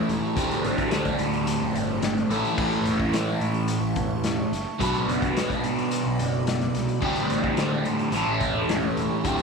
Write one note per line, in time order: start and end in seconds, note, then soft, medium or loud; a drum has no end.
0.00 0.35 A2 loud
0.00 0.35 E3 medium
0.00 0.37 A3 loud
0.00 0.36 C#4 loud
0.00 0.36 E4 loud
0.00 4.77 G4 medium
0.00 0.42 A4 loud
0.00 0.36 E5 medium
0.00 2.27 A5 medium
0.00 0.36 C#6 medium
0.09 0.21 E1 loud
0.09 closed hi-hat medium
0.36 0.48 D1 loud
0.36 2.29 D2 medium
0.36 2.28 A2 medium
0.36 2.30 D3 loud
0.36 2.30 G3 medium
0.36 2.31 C4 loud
0.36 2.30 D5 medium
0.36 2.30 C6 medium
0.36 kick loud
0.36 closed hi-hat loud
0.51 closed hi-hat medium
0.64 0.88 A1 loud
0.64 closed hi-hat medium
0.78 kick medium
0.78 closed hi-hat soft
0.91 1.16 D2 medium
0.91 snare loud
0.91 closed hi-hat loud
1.05 kick medium
1.05 closed hi-hat soft
1.19 1.55 D2 medium
1.19 closed hi-hat medium
1.33 closed hi-hat medium
1.47 closed hi-hat loud
1.61 1.73 D1 medium
1.74 2.22 G1 medium
1.74 closed hi-hat medium
2.02 snare loud
2.02 closed hi-hat loud
2.17 closed hi-hat soft
2.29 2.42 A1 loud
2.29 4.51 A2 loud
2.29 4.51 E3 loud
2.29 4.51 A3 loud
2.29 4.52 C#4 loud
2.29 4.52 E4 loud
2.29 4.52 A4 loud
2.29 4.79 E5 medium
2.29 closed hi-hat medium
2.34 4.80 A5 medium
2.34 4.80 C#6 medium
2.45 closed hi-hat soft
2.58 2.70 A1 loud
2.58 kick loud
2.58 crash medium
2.72 closed hi-hat soft
2.85 3.09 E1 loud
2.85 closed hi-hat medium
3.00 kick medium
3.13 3.37 A2 loud
3.13 snare loud
3.13 closed hi-hat loud
3.40 3.77 A2 loud
3.40 closed hi-hat medium
3.54 closed hi-hat soft
3.68 closed hi-hat loud
3.81 3.94 A1 medium
3.96 4.45 E1 medium
3.96 kick medium
3.96 closed hi-hat medium
4.24 snare loud
4.24 closed hi-hat loud
4.52 4.64 F#1 medium
4.52 snare soft
4.52 closed hi-hat medium
4.79 4.93 B1 loud
4.79 7.00 B2 medium
4.79 7.01 F#3 medium
4.79 7.01 B3 medium
4.79 7.02 D4 medium
4.79 7.01 F#4 medium
4.79 7.02 F#4 loud
4.79 7.02 B4 loud
4.79 8.11 D5 medium
4.79 7.01 B5 medium
4.79 7.01 D6 medium
4.79 kick loud
4.79 closed hi-hat loud
4.94 closed hi-hat soft
5.08 5.32 F#1 loud
5.08 closed hi-hat medium
5.22 kick loud
5.22 closed hi-hat soft
5.37 5.61 B2 medium
5.37 snare loud
5.37 closed hi-hat loud
5.50 kick medium
5.50 closed hi-hat soft
5.64 6.00 B2 medium
5.64 closed hi-hat medium
5.78 closed hi-hat soft
5.91 closed hi-hat loud
6.06 6.18 B1 medium
6.19 6.68 F#1 medium
6.19 closed hi-hat medium
6.47 snare loud
6.47 closed hi-hat loud
6.61 closed hi-hat soft
6.75 6.87 C2 medium
6.75 snare soft
6.75 closed hi-hat medium
6.88 closed hi-hat soft
7.01 8.11 D2 medium
7.01 7.14 D2 medium
7.01 8.12 A2 medium
7.01 8.13 D3 medium
7.01 8.16 G3 loud
7.01 9.42 G4 medium
7.01 9.42 A5 medium
7.01 8.13 C6 medium
7.01 kick loud
7.01 crash loud
7.05 8.13 C4 loud
7.15 closed hi-hat soft
7.30 7.54 A1 medium
7.30 closed hi-hat medium
7.44 kick medium
7.57 7.82 D3 medium
7.57 snare loud
7.57 closed hi-hat loud
7.85 8.09 D3 medium
7.85 closed hi-hat medium
7.99 closed hi-hat soft
8.12 8.25 A1 loud
8.12 9.23 A2 loud
8.12 9.24 E3 medium
8.12 9.25 A3 medium
8.12 9.25 E5 medium
8.12 9.24 C#6 medium
8.12 closed hi-hat loud
8.16 9.25 C#4 loud
8.16 9.25 E4 loud
8.16 9.30 A4 loud
8.27 8.39 A1 loud
8.40 8.89 E1 medium
8.40 kick medium
8.40 closed hi-hat medium
8.69 snare loud
8.69 closed hi-hat medium
8.97 9.09 E1 loud
8.97 closed hi-hat medium
9.24 9.36 D1 medium
9.24 9.42 D2 medium
9.24 9.42 A2 medium
9.24 9.42 D3 medium
9.24 9.42 G3 medium
9.24 9.42 D5 medium
9.24 9.42 C6 loud
9.24 kick loud
9.24 closed hi-hat loud
9.28 9.42 C4 loud
9.38 closed hi-hat soft